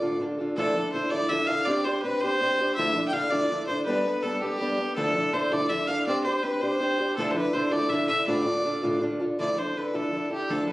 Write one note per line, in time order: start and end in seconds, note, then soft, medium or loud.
0.00 0.21 D2 medium
0.00 0.21 A2 medium
0.00 0.19 D3 medium
0.00 0.20 D4 medium
0.00 0.20 F4 medium
0.00 0.20 A4 medium
0.00 0.20 D5 loud
0.20 0.38 D3 medium
0.20 0.39 D4 medium
0.20 0.39 F4 medium
0.20 0.37 A4 medium
0.38 0.56 D3 soft
0.38 0.57 D4 medium
0.38 0.57 F4 medium
0.38 0.57 A4 medium
0.56 0.75 D2 medium
0.56 0.75 D3 medium
0.56 0.75 F3 medium
0.56 0.76 D4 medium
0.56 0.75 E4 medium
0.56 0.90 A4 loud
0.56 0.74 A4 medium
0.75 0.92 D3 soft
0.75 0.93 D4 medium
0.75 0.94 E4 medium
0.75 0.93 A4 medium
0.93 1.12 D3 medium
0.93 1.12 D4 medium
0.93 1.11 E4 medium
0.93 1.11 A4 medium
0.93 1.12 C5 loud
1.11 1.31 D2 medium
1.11 1.28 D3 medium
1.11 1.31 F3 medium
1.11 1.29 D4 medium
1.11 1.30 E4 medium
1.11 1.30 A4 medium
1.11 1.30 D5 loud
1.29 1.48 D3 medium
1.29 1.49 D4 medium
1.29 1.48 E4 medium
1.29 1.47 A4 medium
1.29 1.49 E5 loud
1.47 1.67 D3 soft
1.47 1.67 D4 soft
1.47 1.67 E4 soft
1.47 1.66 A4 medium
1.47 1.66 F5 loud
1.65 1.85 C4 medium
1.65 1.86 D4 medium
1.65 1.86 G4 medium
1.65 1.86 D5 loud
1.69 1.84 C5 medium
1.84 2.04 D4 soft
1.84 2.04 G4 medium
1.84 2.02 C5 loud
1.84 2.03 C5 medium
2.02 2.22 C4 medium
2.02 2.22 D4 medium
2.02 2.22 G4 medium
2.02 2.22 B4 loud
2.06 2.22 C5 medium
2.21 2.40 C4 medium
2.21 2.41 D4 medium
2.21 2.41 G4 medium
2.21 2.75 C5 loud
2.21 2.41 C5 medium
2.41 2.59 C4 medium
2.41 2.59 D4 medium
2.41 2.60 G4 medium
2.41 2.58 C5 medium
2.59 2.77 D4 soft
2.59 2.78 G4 soft
2.59 2.77 C5 medium
2.75 2.95 D2 medium
2.75 2.96 D3 medium
2.75 2.96 F3 medium
2.75 2.96 D4 medium
2.75 2.95 E4 medium
2.75 3.06 E5 loud
2.80 2.94 A4 medium
2.95 3.12 D3 soft
2.95 3.13 D4 soft
2.95 3.14 E4 medium
2.95 3.14 A4 medium
3.08 3.14 G5 medium
3.13 3.32 D3 medium
3.13 3.31 D4 medium
3.13 3.31 E4 medium
3.13 3.30 A4 medium
3.13 3.32 F5 loud
3.30 3.51 D2 medium
3.30 3.49 D3 medium
3.30 3.51 F3 medium
3.30 3.50 D4 medium
3.30 3.50 E4 medium
3.30 3.50 A4 medium
3.30 3.66 D5 loud
3.50 3.69 D3 medium
3.50 3.69 D4 medium
3.50 3.68 E4 medium
3.50 3.67 A4 medium
3.67 3.87 D4 soft
3.67 3.87 E4 soft
3.67 3.87 A4 medium
3.67 3.85 C5 loud
3.71 3.86 D3 soft
3.86 4.05 G3 medium
3.86 4.06 B3 medium
3.86 4.05 D4 medium
3.86 4.04 A4 medium
3.86 4.24 B4 loud
4.05 4.23 B3 soft
4.05 4.24 D4 medium
4.05 4.23 A4 medium
4.23 4.42 G3 medium
4.23 4.42 B3 medium
4.23 4.41 D4 medium
4.23 4.35 A4 loud
4.23 4.41 A4 medium
4.35 4.42 A4 medium
4.41 4.59 G3 medium
4.41 4.60 B3 medium
4.41 4.60 D4 medium
4.41 4.95 G4 loud
4.41 4.60 A4 medium
4.60 4.79 G3 medium
4.60 4.79 B3 medium
4.60 4.79 D4 medium
4.60 4.77 A4 medium
4.78 4.97 B3 soft
4.78 4.96 D4 soft
4.78 4.97 A4 medium
4.96 5.15 D2 medium
4.96 5.15 D3 medium
4.96 5.15 F3 medium
4.96 5.15 D4 medium
4.96 5.14 E4 medium
4.96 5.35 A4 loud
4.96 5.13 A4 medium
5.14 5.32 D3 soft
5.14 5.33 D4 medium
5.14 5.34 E4 medium
5.14 5.33 A4 medium
5.33 5.52 D3 medium
5.33 5.52 D4 medium
5.33 5.51 E4 medium
5.33 5.51 A4 medium
5.33 5.53 C5 medium
5.52 5.72 D2 medium
5.52 5.69 D3 medium
5.52 5.71 F3 medium
5.52 5.70 D4 medium
5.52 5.71 E4 medium
5.52 5.70 A4 medium
5.52 5.71 D5 loud
5.69 5.89 D3 medium
5.69 5.89 D4 medium
5.69 5.88 E4 medium
5.69 5.87 A4 medium
5.69 5.89 E5 loud
5.87 6.07 D4 medium
5.87 6.08 E4 medium
5.87 6.07 A4 medium
5.87 6.06 F5 loud
5.92 6.07 D3 soft
6.07 6.26 C4 medium
6.07 6.26 D4 medium
6.07 6.26 G4 loud
6.07 6.24 C5 loud
6.07 6.24 D5 loud
6.24 6.44 G4 medium
6.24 6.44 C5 medium
6.28 6.43 D4 medium
6.43 6.62 C4 medium
6.43 6.62 D4 medium
6.43 6.61 G4 medium
6.43 6.62 B4 medium
6.43 6.61 C5 medium
6.61 6.79 C4 medium
6.61 6.80 D4 medium
6.61 6.81 G4 medium
6.61 7.16 C5 loud
6.61 6.80 C5 medium
6.80 6.99 C4 medium
6.80 6.99 D4 medium
6.80 6.99 G4 medium
6.80 6.97 C5 medium
6.98 7.17 D4 soft
6.98 7.18 G4 soft
6.98 7.17 C5 medium
7.16 7.36 D2 medium
7.16 7.36 D3 loud
7.16 7.36 F3 medium
7.16 7.36 D4 medium
7.16 7.35 E4 loud
7.16 7.33 A4 medium
7.16 7.33 A4 loud
7.31 7.54 A4 medium
7.31 7.37 C5 medium
7.35 7.52 D3 soft
7.35 7.53 D4 medium
7.35 7.54 E4 medium
7.35 7.55 B4 loud
7.53 7.72 D3 medium
7.53 7.71 D4 medium
7.53 7.71 E4 medium
7.53 7.71 A4 medium
7.53 7.73 C5 medium
7.72 7.91 D2 medium
7.72 7.89 D3 medium
7.72 7.92 F3 medium
7.72 7.90 D4 medium
7.72 7.91 E4 medium
7.72 7.91 A4 medium
7.72 7.91 D5 loud
7.89 8.09 D3 medium
7.89 8.09 D4 medium
7.89 8.09 E4 medium
7.89 8.08 A4 medium
7.89 8.07 E5 loud
8.08 8.27 D4 soft
8.08 8.28 E4 soft
8.08 8.27 A4 medium
8.08 8.26 E5 loud
8.12 8.26 D3 soft
8.27 8.46 D2 medium
8.27 8.46 A2 medium
8.27 8.46 D3 medium
8.27 8.46 D4 medium
8.27 8.45 F4 medium
8.27 8.44 A4 medium
8.27 8.97 D5 loud
8.45 8.63 D3 soft
8.45 8.64 D4 medium
8.45 8.65 F4 medium
8.45 8.64 A4 medium
8.64 8.83 D3 medium
8.64 8.83 D4 medium
8.64 8.82 F4 medium
8.64 8.81 A4 medium
8.82 9.02 D2 medium
8.82 9.02 A2 medium
8.82 8.99 D3 medium
8.82 9.00 D4 medium
8.82 9.02 F4 medium
8.82 9.01 A4 medium
9.01 9.19 D3 medium
9.01 9.20 D4 medium
9.01 9.19 F4 medium
9.01 9.18 A4 medium
9.20 9.39 D3 medium
9.20 9.39 D4 medium
9.20 9.39 F4 medium
9.20 9.38 A4 medium
9.39 9.57 D2 medium
9.39 9.57 D3 medium
9.39 9.57 F3 medium
9.39 9.58 D4 medium
9.39 9.56 E4 medium
9.39 9.55 A4 medium
9.39 9.60 D5 medium
9.57 9.74 D3 soft
9.57 9.75 D4 soft
9.57 9.75 E4 soft
9.57 9.75 A4 soft
9.57 9.79 C5 medium
9.75 9.94 D3 medium
9.75 9.93 D4 medium
9.75 9.93 E4 medium
9.75 9.92 A4 medium
9.75 9.97 B4 medium
9.94 10.13 D2 medium
9.94 10.11 D3 medium
9.94 10.13 F3 medium
9.94 10.12 D4 medium
9.94 10.12 E4 medium
9.94 10.12 A4 medium
9.94 10.31 A4 medium
10.12 10.30 D3 medium
10.12 10.31 D4 medium
10.12 10.30 E4 medium
10.12 10.29 A4 medium
10.31 10.49 D3 soft
10.31 10.49 D4 soft
10.31 10.49 E4 soft
10.31 10.52 G4 medium
10.31 10.49 A4 medium
10.49 10.67 D2 medium
10.49 10.68 D3 medium
10.49 10.68 F3 medium
10.49 10.68 D4 medium
10.49 10.68 E4 medium
10.49 10.68 A4 medium
10.49 10.66 A4 medium
10.68 10.72 E4 soft
10.68 10.72 A4 medium
10.68 10.72 B4 medium